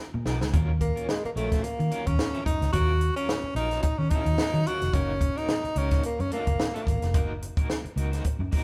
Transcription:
0.14 fingered electric bass A#2, muted clean electric guitar stroke
0.26 fingered electric bass B1, clean electric guitar F3 B3 D#4 A#4, snare
0.41 fingered electric bass C#2, muted clean electric guitar stroke, snare
0.53 fingered electric bass D#2, clean electric guitar F#3 C#4 F4 A#4, kick, closed hi-hat
0.81 tenor saxophone A#3, muted clean electric guitar stroke, kick, closed hi-hat
0.96 clean electric guitar F#3 C#4 F4 A#4, closed hi-hat
1.09 tenor saxophone G#3, muted clean electric guitar stroke, snare
1.24 tenor saxophone A#3, muted clean electric guitar stroke, muted fingered electric bass stroke, closed hi-hat
1.36 fingered electric bass A#1, clean electric guitar F#3 C#4 F4 A#4, tenor saxophone A3, closed hi-hat
1.52 clean electric guitar F#3 C#4 F4 C5, kick, snare, closed hi-hat
1.63 tenor saxophone A#3, muted fingered electric bass stroke, closed hi-hat
1.79 fingered electric bass D#3, muted clean electric guitar stroke, closed hi-hat
1.91 clean electric guitar F#3 C#4 F4 A#4, closed hi-hat
2.06 fingered electric bass D#2, tenor saxophone C#4, muted clean electric guitar stroke, kick, closed hi-hat
2.19 muted clean electric guitar stroke, snare
2.34 clean electric guitar F#3 C#4 F4 A#4, closed hi-hat
2.46 fingered electric bass F#2, tenor saxophone D#4, muted clean electric guitar stroke, kick, closed hi-hat
2.61 fingered electric bass C#2, muted clean electric guitar stroke, snare, closed hi-hat
2.72 fingered electric bass D#2, clean electric guitar F#3 C#4 F4 A#4, tenor saxophone F#4, kick, closed hi-hat
3.01 muted clean electric guitar stroke, closed hi-hat
3.16 clean electric guitar F#3 C#4 F4 A#4, tenor saxophone C#4, closed hi-hat
3.29 muted clean electric guitar stroke, snare
3.44 muted fingered electric bass stroke, muted clean electric guitar stroke
3.55 fingered electric bass A#1, clean electric guitar F#3 C#4 F4 A#4, tenor saxophone D#4, closed hi-hat
3.71 clean electric guitar F#3 C#4 F4 C5, snare, closed hi-hat
3.83 tenor saxophone D#4, muted fingered electric bass stroke, kick, closed hi-hat
3.98 fingered electric bass D#3, tenor saxophone C#4, muted clean electric guitar stroke
4.10 clean electric guitar F#3 C#4 F4, tenor saxophone D#4, kick, closed hi-hat
4.14 clean electric guitar A#4
4.26 fingered electric bass D#2, muted clean electric guitar stroke, closed hi-hat
4.38 clean electric guitar F#3 C#4 F4 A#4, snare
4.54 fingered electric bass D#3, muted clean electric guitar stroke, closed hi-hat
4.66 clean electric guitar F#3 C#4 F4 A#4, tenor saxophone F#4, closed hi-hat
4.81 fingered electric bass F1, muted clean electric guitar stroke, snare, closed hi-hat
4.93 fingered electric bass F#1, clean electric guitar A#3 D#4 F#4 A#4, tenor saxophone C#4, kick, closed hi-hat
5.21 muted clean electric guitar stroke, kick, closed hi-hat
5.36 clean electric guitar A#3 D#4 F#4 A#4, tenor saxophone D#4, closed hi-hat
5.48 muted clean electric guitar stroke, snare
5.63 muted clean electric guitar stroke, muted fingered electric bass stroke, closed hi-hat
5.75 fingered electric bass C#2, clean electric guitar A#3 D#4 F#4 A#4, tenor saxophone C#4, closed hi-hat
5.91 clean electric guitar A#3 D#4, kick, snare, closed hi-hat
6.03 tenor saxophone A#3, muted fingered electric bass stroke, closed hi-hat
6.19 fingered electric bass F#2, tenor saxophone C#4, muted clean electric guitar stroke, closed hi-hat
6.31 clean electric guitar A#3 D#4 F#4 A#4, tenor saxophone A#3, closed hi-hat
6.46 fingered electric bass F#1, muted clean electric guitar stroke, kick, closed hi-hat
6.59 muted clean electric guitar stroke, snare
6.74 tenor saxophone A#3, clean electric guitar A#3 D#4 F#4 A#4, closed hi-hat
6.86 fingered electric bass G#1, muted clean electric guitar stroke, kick, closed hi-hat
7.02 fingered electric bass F1, muted clean electric guitar stroke, snare, closed hi-hat
7.14 fingered electric bass F#1, clean electric guitar A#3 D#4 F#4 A#4, kick, closed hi-hat
7.42 muted clean electric guitar stroke, closed hi-hat
7.57 clean electric guitar A#3 D#4 F#4 A#4, kick, closed hi-hat
7.69 muted clean electric guitar stroke, snare
7.84 muted clean electric guitar stroke, muted fingered electric bass stroke, closed hi-hat
7.96 fingered electric bass C#2, clean electric guitar A#3 D#4 F#4 A#4, closed hi-hat
8.12 clean electric guitar A#3 D#4 C5, snare, closed hi-hat
8.24 muted fingered electric bass stroke, kick, closed hi-hat
8.39 fingered electric bass F#2, muted clean electric guitar stroke
8.52 clean electric guitar A#3 D#4 F#4 A#4, kick, open hi-hat

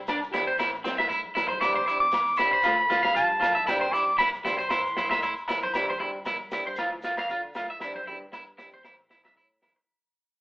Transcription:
Already playing: fingered electric bass C2
0.08 clean electric guitar D4, kick, snare, low agogo, shekere
0.23 shekere
0.31 fingered electric bass E2, nylon-string guitar C4 D4 G4, clean electric guitar E4, snare, low conga, shekere
0.47 clean electric guitar C5
0.58 fingered electric bass A1, nylon-string guitar E3 C4 E4, clean electric guitar E4, kick, snare, low agogo, shekere
0.74 shekere
0.84 clean electric guitar C4, nylon-string guitar E4, snare, high conga, shekere
0.98 fingered electric bass A2, clean electric guitar E5, snare, low agogo
1.09 clean electric guitar E4, kick, shekere
1.25 high conga
1.35 fingered electric bass B1, clean electric guitar E4, nylon-string guitar E4, snare, low conga, low agogo, shekere
1.40 nylon-string guitar C4
1.49 clean electric guitar C5, high conga
1.61 fingered electric bass C2, nylon-string guitar E3 C4 D4 G4, clean electric guitar E4, clarinet D6, kick, snare, low agogo, shekere
1.76 clean electric guitar C5, high conga
1.88 nylon-string guitar D4 G4, clean electric guitar E4, shekere
1.92 nylon-string guitar C4
2.00 fingered electric bass E2, clarinet D6
2.11 kick, snare, low agogo, shekere
2.26 shekere
2.36 fingered electric bass C#2, clean electric guitar E4, nylon-string guitar G4, clarinet B5, snare, shekere
2.41 nylon-string guitar C4 D4
2.53 clean electric guitar C5
2.63 fingered electric bass D2, nylon-string guitar F3 A3 E4, clean electric guitar F4, kick, snare, low agogo, shekere
2.78 shekere
2.90 nylon-string guitar A3 E4, clean electric guitar F4, snare, high conga, shekere
3.03 fingered electric bass G2, clean electric guitar F5, snare, low agogo
3.15 clean electric guitar F4, clarinet A5, kick, shekere
3.29 high conga
3.41 fingered electric bass B1, nylon-string guitar E4, clean electric guitar F4, snare, low conga, low agogo, shekere
3.46 nylon-string guitar A3
3.55 clean electric guitar E5, high conga
3.67 fingered electric bass C2, nylon-string guitar E3 C4 D4 G4, clean electric guitar E4, clarinet G5, kick, snare, low agogo, shekere
3.81 clean electric guitar C5, low conga
3.92 nylon-string guitar C4 D4 G4, clean electric guitar E4, clarinet D6, shekere
4.06 fingered electric bass C2, shekere
4.18 clean electric guitar E4, clarinet B5, kick, snare, low agogo, shekere
4.33 shekere
4.44 fingered electric bass B1, nylon-string guitar C4 D4 G4, clean electric guitar E4, clarinet C6, snare, high conga, low conga, shekere
4.58 clean electric guitar C5, shekere
4.69 fingered electric bass A1, nylon-string guitar E3 C4 E4, clean electric guitar E4, kick, snare, low agogo, shekere
4.85 shekere
4.97 nylon-string guitar C4 E4, clean electric guitar E4, snare, high conga, shekere
5.10 fingered electric bass A2, clean electric guitar E5, snare, low agogo, shekere
5.22 clean electric guitar E4, kick, shekere
5.37 shekere
5.48 fingered electric bass G1, nylon-string guitar C4 E4, clean electric guitar E4, snare, low conga, low agogo, shekere
5.62 clean electric guitar C5, high conga, shekere
5.74 fingered electric bass C2, nylon-string guitar E3 C4 D4 G4, clean electric guitar E4, kick, snare, low agogo, shekere
5.90 clean electric guitar C5, high conga
5.99 fingered electric bass G2, nylon-string guitar C4 D4 G4, clean electric guitar E4, low conga
6.25 clean electric guitar E4, kick, snare, low conga, low agogo, shekere
6.51 nylon-string guitar C4 D4 G4, clean electric guitar E4, snare, low conga, shekere
6.67 fingered electric bass G2, clean electric guitar C5
6.76 fingered electric bass D2, nylon-string guitar F3, clean electric guitar F4, kick, snare, high conga, low agogo, shekere
6.80 nylon-string guitar E4, muted nylon-string guitar stroke
7.02 nylon-string guitar E4, clean electric guitar F4, snare, shekere
7.07 nylon-string guitar A3
7.17 fingered electric bass F2, clean electric guitar F5, snare, high conga, low agogo, shekere
7.29 fingered electric bass D3, clean electric guitar F4, kick, shekere
7.54 fingered electric bass D2, nylon-string guitar A3 E4, clean electric guitar F4, snare, high conga, low conga, low agogo, shekere
7.70 clean electric guitar E5
7.80 fingered electric bass C2, nylon-string guitar E3 C4 D4, clean electric guitar E4, kick, snare, low agogo, shekere
7.84 nylon-string guitar G4
7.95 clean electric guitar C5, high conga
8.06 fingered electric bass G2, nylon-string guitar D4 G4, clean electric guitar E4, low conga
8.11 nylon-string guitar C4
8.32 clean electric guitar E4, kick, snare, low conga, low agogo, shekere
8.58 nylon-string guitar D4 G4, clean electric guitar E4, snare, low conga, shekere
8.63 nylon-string guitar C4
8.73 fingered electric bass E2, clean electric guitar C5, high conga
8.84 fingered electric bass A1, nylon-string guitar E3 C4 E4, clean electric guitar E4, kick, snare, high conga, low agogo, shekere
9.10 nylon-string guitar E4, clean electric guitar E4, snare, shekere
9.14 nylon-string guitar C4
9.25 fingered electric bass C2, clean electric guitar E5, snare, high conga, low agogo, shekere
9.37 fingered electric bass A2, clean electric guitar E4, kick, shekere
9.62 nylon-string guitar C4 E4, clean electric guitar E4, snare, high conga, low conga, low agogo, shekere
9.76 muted clean electric guitar stroke

